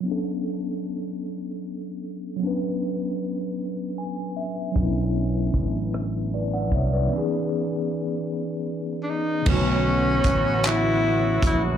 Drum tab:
CC |------|------|------|------|
HH |------|------|x-xx-x|------|
CP |------|------|------|------|
SD |------|------|---r--|------|
BD |------|------|o-o--o|------|

CC |x-----|
HH |--xx-x|
CP |---x--|
SD |------|
BD |o-o--o|